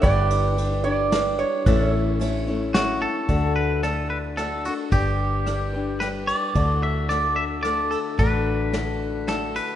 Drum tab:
RD |xxx-x-|x-x-x-|x-x-xx|x-x-xx|
SD |----o-|----o-|--r-r-|--r-r-|
BD |o-----|o-----|o-----|o-----|

RD |x-x-xx|x-x-xx|
SD |--r-r-|--o-o-|
BD |o-----|o-----|